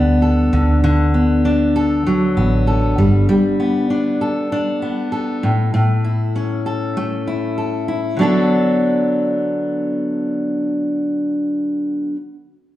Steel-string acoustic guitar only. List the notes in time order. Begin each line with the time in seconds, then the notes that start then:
Already playing: G3 B3 D4 A4
0.22 A4
0.53 D3
0.84 D3
1.14 B3
1.45 D4
1.76 A4
2.07 F#3
2.37 B3
2.67 A4
2.98 G3
3.29 G3
3.60 B3
3.90 D4
4.21 A4
4.52 D4
4.82 B3
5.12 A4
5.43 A2
5.74 A2
6.04 E4
6.36 C#4
6.66 A4
6.97 A3
7.27 E4
7.58 A4
7.88 E4
8.17 D3 F#3 D4
8.22 B3 A4